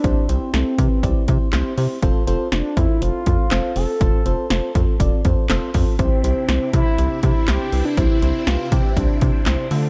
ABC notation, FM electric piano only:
X:1
M:4/4
L:1/8
Q:1/4=121
K:C
V:1 name="FM electric piano"
[CEGc] [CEGc] [CEGA] [CEGB] [CEGd] [CEGc] [CEGc] [CEGc] | [CFAc] [CFAc] [CFAc] [CFAc] [CFAc] [CFAc] [CFAc] [CFAc] | [CFAc] [CFAc] [CFAc] [CFAc] [CFAd] [CFAc] [CFAc] [CFAc] | [CEGc] [CEGc] [CEGc] [CEGc] [CEGc] [CEGc] [CEGc] [CEGB] |
[CEGc] [CEGc] [CEGB] [CEGc] [CEGc] [CEGc] [CEGc] [A,DFA] |]